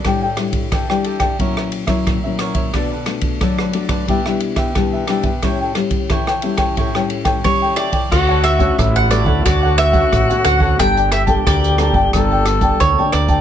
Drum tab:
CC |----------------|----------------|----------------|x---------------|
RD |x-xxx-xxx-xxx-xx|x-xxx-xxx-xxx-xx|x-xxx-xxx-xxx-xx|----------------|
HH |----------------|----------------|----------------|--xxx-x-x-xxxxx-|
SD |r-r-rr-r-r-rr-r-|r-r-rr-r-r-rr-r-|r-r-rr-r-r-rr-r-|r-r-r-r-r-r-r-r-|
BD |o--oo--oo--oo--o|o--oo--oo--oo--o|o--oo--oo--oo--o|o--oo--oo--oo--o|

CC |----------------|
RD |----------------|
HH |xxxxxxx-x-xxx-xx|
SD |r-r-r-r-r-r-r-r-|
BD |o--oo--oo--oo--o|